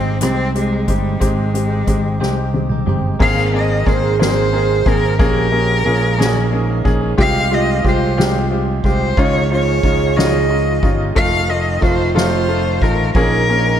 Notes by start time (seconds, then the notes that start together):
Already playing: G#1 G#3 C4 D#4 G4
0.21 C2 G#3 C4 D#4 G4, cross-stick, closed hi-hat
0.37 C4 D#4 G4
0.55 G#3 C4 G4, closed hi-hat
0.70 C4 D#4 G4
0.87 G1 G3 G#3 C4 D#4 G4, kick, closed hi-hat
1.20 G#1 G#3 C4 D#4 G4, kick, closed hi-hat
1.37 C4 D#4 G4
1.54 G#3 C4 G4, closed hi-hat
1.70 C4 D#4 G4
1.87 G#1 G#3 C4 D#4 G4, kick, closed hi-hat
2.20 C2 G#3 C4 D#4 G4, snare
2.37 C4 D#4 G4
2.53 G#3 C4 G4, high tom
2.69 C4 D#4 G4, mid tom
2.86 G1 G#3 C4 D#4 G4, mid tom
3.19 G#1 G#3 A#3 C4 D#4 G#4 A#4 F5, kick, crash
3.53 G#3 A#3 C4 D#4 G#4 A#4 D#5, ride
3.86 G#1 G#3 A#3 C4 D#4 G#4 A#4 C5, kick
4.03 C4 D#4 A#4
4.19 G#3 A#3 C4 D#4 G#4 A#4 C5, snare, ride
4.53 G#3 A#3 C4 D#4 G#4 A#4, ride
4.86 G#1 G#3 A#3 C4 D#4 G#4 A#4, kick, ride
5.02 C4 D#4 A#4
5.19 A#1 A#2 F3 G#3 A#3 C#4 G4 G#4 A#4, kick
5.52 F3 G#3 A#3 C#4 G#4, ride
5.85 A#1 F3 G#3 A#3 C#4 F4 G#4, ride
6.02 G#3 C#4 G#4
6.18 A#2 F3 G#3 A#3 C#4 D#4 G#4, snare
6.51 F3 G#3 A#3 C#4 G#4, ride
6.84 A#1 F3 G#3 A#3 C#4 G#4, kick, ride
7.01 G#3 C#4 G#4
7.18 C2 C3 F3 G#3 C4 F4 G4 F5, kick
7.51 F3 G#3 C4 F4 G4 D#5, ride
7.84 C2 F3 G#3 C4 F4 G4 C5, kick, ride
8.00 G#3 C4 G4
8.17 C3 F3 G#3 C4 F4 G4, snare, ride
8.50 F3 G#3 C4 F4 G4, ride
8.83 C2 F3 G#3 C4 F4 G4 C5, kick, ride
9.00 G#3 C4 G4
9.17 C#2 C#3 F3 G#3 C#4 D#4 F4 G#4 C#5, kick
9.50 F3 G#3 C#4 D#4 F4 C#5, ride
9.83 C#2 F3 G#3 C#4 D#4 F4, kick, ride
9.99 G#3 D#4 F4
10.16 C#3 F3 G#3 C#4 D#4 F4 D#5, snare, ride
10.49 F3 G#3 C#4 D#4 F4, ride
10.82 G1 F3 G#3 C#4 D#4 F4 G4, kick, ride
10.98 G#3 D#4 F4
11.10 G4
11.15 F1 F2 C3 D#3 A3 C4 D#4 F4 F5, kick
11.48 D#3 A3 C4 D#4 F4 D#5, ride
11.81 F1 D#3 A3 C4 D#4 F4 C5, kick, ride
11.85 F4
11.98 D#3 A3 C4 F4
12.14 F2 C3 D#3 A3 C4 D#4 F4 C5, snare, ride
12.48 D#3 A3 C4 D#4 F4, ride
12.81 A1 D#3 A3 C4 D#4 F4 A#4, kick, ride
12.97 D#3 A3 C4 F4
13.14 A#1 A#2 F3 G#3 A#3 C#4 D#4 F4 G#4 A#4, kick, ride
13.47 F3 G#3 A#3 C#4 F4 G#4, ride